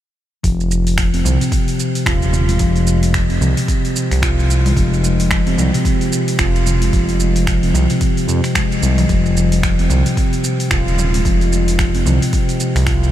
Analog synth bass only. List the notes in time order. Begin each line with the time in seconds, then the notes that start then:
0.44 F1
1.14 F1
1.25 C2
2.06 D#1
2.60 F1
3.30 F1
3.41 C2
4.11 C2
4.77 F1
5.47 F1
5.58 C2
6.39 F1
6.93 F1
7.63 F1
7.74 C2
8.28 F2
8.82 C2
9.09 F1
9.79 F1
9.90 C2
10.71 D#1
11.25 F1
11.95 F1
12.06 C2
12.75 C2